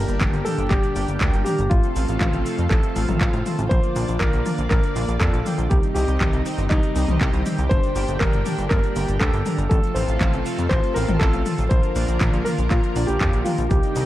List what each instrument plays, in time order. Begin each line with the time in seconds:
Already playing: analog synth pad A#2 D3 G3 D4 G4, analog polysynth D4 G4 A#4 G5, grand piano A#4
0.08 analog synth bass G1, closed hi-hat, cabasa
0.21 analog synth bass G1, kick, clap, closed hi-hat, high tom, cabasa
0.33 analog synth bass G1, closed hi-hat, cabasa
0.45 analog polysynth D4 G4 A#4 G5, grand piano A4, open hi-hat, high tom, cabasa
0.58 analog synth bass G1, closed hi-hat, cabasa
0.69 analog synth bass G1, grand piano G4, kick, clap, closed hi-hat, cabasa
0.84 closed hi-hat, cabasa
0.96 analog synth bass G1, analog polysynth D4 G4 A#4 G5, open hi-hat, cabasa
1.08 analog synth bass G1, closed hi-hat, cabasa
1.21 analog synth bass D2, analog polysynth D4 G4 A#4 G5, kick, clap, closed hi-hat, cabasa
1.33 analog synth bass G1, closed hi-hat, cabasa
1.44 analog polysynth D4 G4 A#4 A#5, grand piano G4, open hi-hat, high tom, cabasa
1.58 analog synth bass G1, closed hi-hat, cabasa
1.69 analog synth bass A1, analog synth pad C3 F3 A3 F4 A4, grand piano F4, kick, closed hi-hat, cabasa
1.83 closed hi-hat, cabasa
1.96 analog synth bass A1, analog polysynth C4 F4 A4 F5, open hi-hat, cabasa
2.08 analog synth bass A1, closed hi-hat, cabasa
2.19 analog synth bass A1, grand piano F4, kick, clap, closed hi-hat, high tom, cabasa
2.33 analog synth bass A1, closed hi-hat, cabasa
2.46 analog polysynth C4 F4 A4 F5, open hi-hat, cabasa
2.58 analog synth bass F2, closed hi-hat, cabasa
2.70 analog synth bass A1, grand piano A4, kick, clap, closed hi-hat, cabasa
2.83 closed hi-hat, cabasa
2.96 analog synth bass A1, analog polysynth C4 F4 A4 F5, open hi-hat, cabasa
3.09 analog synth bass A1, closed hi-hat, high tom, cabasa
3.21 analog synth bass A1, analog polysynth C4 F4 A4 F5, kick, clap, closed hi-hat, cabasa
3.33 analog synth bass A1, closed hi-hat, cabasa
3.46 analog polysynth C4 F4 A4 A5, open hi-hat, high tom, cabasa
3.58 analog synth bass A1, closed hi-hat, cabasa
3.69 analog synth bass A#1, analog synth pad D3 A#3 D5, grand piano C5, kick, closed hi-hat, cabasa
3.83 closed hi-hat, cabasa
3.96 analog synth bass A#1, analog polysynth A#3 D4 F4 D5, open hi-hat, cabasa
4.08 analog synth bass A#1, closed hi-hat, cabasa
4.19 analog synth bass A#1, grand piano A#4, kick, clap, closed hi-hat, high tom, cabasa
4.33 analog synth bass A#1, closed hi-hat, cabasa
4.46 analog polysynth A#3 D4 F4 D5, open hi-hat, high tom, cabasa
4.58 analog synth bass A#1, closed hi-hat, cabasa
4.69 analog synth bass A#1, grand piano A#4, kick, clap, closed hi-hat, cabasa
4.83 closed hi-hat, cabasa
4.96 analog synth bass A#1, analog polysynth A#3 D4 F4 D5, open hi-hat, cabasa
5.08 analog synth bass A#1, closed hi-hat, cabasa
5.20 analog synth bass F2, analog polysynth A#3 D4 F4 D5, grand piano A4, kick, clap, closed hi-hat, cabasa
5.33 analog synth bass A#1, closed hi-hat, cabasa
5.46 analog polysynth A#3 D4 F4 G5, open hi-hat, high tom, cabasa
5.58 analog synth bass A#1, closed hi-hat, cabasa
5.69 analog synth bass C2, analog synth pad C3 D#3 G3 D#4 G4, grand piano G4, kick, closed hi-hat, cabasa
5.83 closed hi-hat, cabasa
5.94 analog synth bass C2, analog polysynth C4 D#4 G4 D#5, grand piano G4, open hi-hat, cabasa
6.08 analog synth bass C2, closed hi-hat, cabasa
6.21 analog synth bass C2, kick, clap, closed hi-hat, high tom, cabasa
6.33 analog synth bass C2, closed hi-hat, cabasa
6.46 analog polysynth C4 D#4 G4 D#5, open hi-hat, cabasa
6.58 analog synth bass G1, closed hi-hat, cabasa
6.69 analog synth bass C2, grand piano D#4, kick, clap, closed hi-hat, cabasa
6.83 closed hi-hat, cabasa
6.96 analog synth bass C2, analog polysynth C4 D#4 G4 D#5, open hi-hat, cabasa
7.08 analog synth bass C2, closed hi-hat, high tom, cabasa
7.21 analog synth bass C2, analog polysynth C4 D#4 G4 D#5, kick, clap, closed hi-hat, cabasa
7.33 analog synth bass C2, closed hi-hat, cabasa
7.46 analog polysynth C4 D#4 G4 G5, open hi-hat, high tom, cabasa
7.58 analog synth bass C2, closed hi-hat, cabasa
7.69 analog synth bass G1, analog synth pad A#2 D3 D4, grand piano C5, kick, closed hi-hat, cabasa
7.83 closed hi-hat, cabasa
7.96 analog synth bass G1, analog polysynth D4 G4 A#4 G5, open hi-hat, cabasa
8.08 analog synth bass G1, closed hi-hat, cabasa
8.19 analog synth bass G1, grand piano A#4, kick, clap, closed hi-hat, high tom, cabasa
8.33 analog synth bass G1, closed hi-hat, cabasa
8.46 analog polysynth D4 G4 A#4 G5, open hi-hat, high tom, cabasa
8.58 analog synth bass G1, closed hi-hat, cabasa
8.69 analog synth bass G1, grand piano A#4, kick, clap, closed hi-hat, cabasa
8.83 closed hi-hat, cabasa
8.96 analog synth bass G1, analog polysynth D4 G4 A#4 G5, open hi-hat, cabasa
9.08 analog synth bass G1, closed hi-hat, cabasa
9.19 analog synth bass D2, analog polysynth D4 G4 A#4 G5, grand piano A4, kick, clap, closed hi-hat, cabasa
9.33 analog synth bass G1, closed hi-hat, cabasa
9.46 analog polysynth D4 G4 A#4 A#5, open hi-hat, high tom, cabasa
9.58 analog synth bass G1, closed hi-hat, cabasa
9.69 analog synth bass A1, analog synth pad C3 F3 A3 F4 A4, grand piano A4, kick, closed hi-hat, cabasa
9.84 closed hi-hat, cabasa
9.95 analog synth bass A1, analog polysynth C4 F4 A4 F5, grand piano C5, open hi-hat, cabasa
10.08 analog synth bass A1, closed hi-hat, cabasa
10.21 analog synth bass A1, kick, clap, closed hi-hat, high tom, cabasa
10.33 analog synth bass A1, closed hi-hat, cabasa
10.46 analog polysynth C4 F4 A4 F5, open hi-hat, cabasa
10.58 analog synth bass F2, closed hi-hat, cabasa
10.69 analog synth bass A1, grand piano C5, kick, clap, closed hi-hat, cabasa
10.83 closed hi-hat, cabasa
10.94 analog synth bass A1, analog polysynth C4 F4 A4 F5, grand piano A#4, open hi-hat, cabasa
11.08 analog synth bass A1, closed hi-hat, high tom, cabasa
11.19 analog synth bass A1, analog polysynth C4 F4 A4 F5, grand piano A4, kick, clap, closed hi-hat, cabasa
11.33 analog synth bass A1, closed hi-hat, cabasa
11.46 analog polysynth C4 F4 A4 A5, open hi-hat, high tom, cabasa
11.58 analog synth bass A1, closed hi-hat, cabasa
11.69 analog synth bass A#1, analog synth pad D3 A#3 A#4, grand piano C5, kick, closed hi-hat, cabasa
11.83 closed hi-hat, cabasa
11.96 analog synth bass A#1, analog polysynth A#3 D4 F4 D5, open hi-hat, cabasa
12.08 analog synth bass A#1, closed hi-hat, cabasa
12.21 analog synth bass A#1, kick, clap, closed hi-hat, high tom, cabasa
12.33 analog synth bass A#1, closed hi-hat, cabasa
12.44 analog polysynth A#3 D4 F4 D5, grand piano A#4, open hi-hat, high tom, cabasa
12.58 analog synth bass A#1, closed hi-hat, cabasa
12.69 analog synth bass A#1, grand piano F4, kick, clap, closed hi-hat, cabasa
12.83 closed hi-hat, cabasa
12.96 analog synth bass A#1, analog polysynth A#3 D4 F4 D5, open hi-hat, cabasa
13.07 analog synth bass A#1, grand piano G4, closed hi-hat, cabasa
13.21 analog synth bass F2, analog polysynth A#3 D4 F4 D5, kick, clap, closed hi-hat, cabasa
13.33 analog synth bass A#1, closed hi-hat, cabasa
13.44 analog polysynth A#3 D4 F4 G5, grand piano F4, open hi-hat, high tom, cabasa
13.58 analog synth bass A#1, closed hi-hat, cabasa
13.69 analog synth bass C2, analog synth pad C3 D#3 G3 D#4 G4, grand piano G4, kick, closed hi-hat, cabasa
13.83 closed hi-hat, cabasa
13.96 analog synth bass C2, analog polysynth C4 D#4 G4 D#5, open hi-hat, cabasa